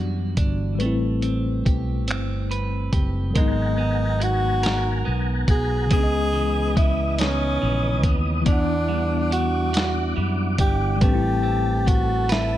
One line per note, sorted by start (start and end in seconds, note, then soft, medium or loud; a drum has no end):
0.00 0.35 F#2 medium
0.00 0.77 E3 medium
0.00 1.74 E3 medium
0.00 0.80 G3 medium
0.00 0.76 B3 medium
0.00 0.37 D4 soft
0.00 0.77 D4 medium
0.00 0.79 F#4 medium
0.00 0.89 F#4 medium
0.37 0.81 G1 medium
0.37 0.89 D4 soft
0.37 kick medium
0.37 closed hi-hat medium
0.75 3.29 G3 medium
0.75 3.31 B4 medium
0.80 1.62 A1 medium
0.80 3.35 A3 medium
0.80 3.33 C4 medium
0.80 closed hi-hat medium
0.86 3.34 E4 medium
1.22 2.07 C4 soft
1.22 closed hi-hat soft
1.66 2.09 B1 medium
1.66 2.92 G4 soft
1.66 kick medium
1.66 closed hi-hat medium
2.08 2.90 G1 medium
2.08 3.44 C4 medium
2.08 finger snap medium
2.08 closed hi-hat medium
2.51 4.63 B4 medium
2.51 closed hi-hat soft
2.93 3.32 F#1 medium
2.93 3.44 G4 soft
2.93 kick medium
2.93 closed hi-hat medium
3.30 5.84 F#3 medium
3.30 5.86 A#4 medium
3.35 5.02 G#1 medium
3.35 6.32 G#3 medium
3.35 5.88 B3 medium
3.35 4.25 D#4 medium
3.35 5.89 F#5 medium
3.35 5.89 G#5 medium
3.35 5.89 A#5 medium
3.35 kick loud
3.35 closed hi-hat medium
3.41 5.90 D#4 medium
3.78 5.05 B3 medium
4.20 5.47 F#4 medium
4.20 5.07 F#4 loud
4.20 closed hi-hat medium
4.63 5.99 A#4 medium
4.63 snare loud
4.63 closed hi-hat medium
5.05 5.45 B1 medium
5.05 6.75 B3 medium
5.48 5.92 B1 medium
5.48 5.99 F#4 soft
5.48 5.89 G#4 medium
5.48 kick medium
5.48 closed hi-hat medium
5.86 8.40 C#3 medium
5.86 8.42 G#3 medium
5.91 7.57 C#2 medium
5.91 8.45 C#3 medium
5.91 8.44 B3 medium
5.91 6.73 G#4 loud
5.91 8.44 B4 medium
5.91 8.44 D#5 medium
5.91 8.44 D#6 medium
5.91 kick loud
5.91 closed hi-hat medium
5.97 6.00 D4 soft
6.03 8.49 D#5 medium
6.33 7.61 E3 medium
6.76 8.04 B3 medium
6.76 7.21 E4 medium
6.76 kick loud
6.76 closed hi-hat medium
7.18 8.15 C#4 medium
7.18 8.55 D#4 medium
7.18 snare loud
7.18 closed hi-hat medium
7.62 8.04 A#1 medium
7.62 8.46 E3 medium
8.03 8.43 D#2 medium
8.03 9.31 B3 soft
8.03 kick medium
8.03 closed hi-hat medium
8.42 10.95 E3 medium
8.42 10.97 B3 medium
8.46 10.13 E2 medium
8.46 11.96 E3 medium
8.46 9.28 D4 medium
8.46 10.99 D4 medium
8.46 10.99 E4 medium
8.46 10.99 F#5 medium
8.46 10.99 D6 medium
8.46 kick loud
8.46 closed hi-hat medium
8.52 11.01 F#5 medium
8.88 10.16 G3 medium
9.31 10.58 D4 medium
9.31 10.13 F#4 medium
9.31 closed hi-hat medium
9.73 11.10 F#4 medium
9.73 snare loud
9.73 closed hi-hat medium
10.16 10.56 F#2 medium
10.16 11.01 G3 medium
10.58 11.02 G1 medium
10.58 11.10 D4 soft
10.58 10.99 G4 medium
10.58 kick medium
10.58 closed hi-hat medium
10.97 12.58 G3 medium
10.97 12.58 B4 medium
11.01 12.58 A1 loud
11.01 12.58 A3 medium
11.01 12.58 C4 medium
11.01 11.90 G4 loud
11.01 12.58 A4 medium
11.01 12.58 A5 medium
11.01 kick loud
11.01 closed hi-hat medium
11.08 11.11 D4 soft
11.15 12.58 E4 medium
11.43 12.58 C4 medium
11.87 12.33 F#4 loud
11.87 12.58 G4 medium
11.87 kick medium
11.87 closed hi-hat medium
12.29 12.58 E4 loud
12.29 12.58 B4 medium
12.29 snare loud
12.29 closed hi-hat medium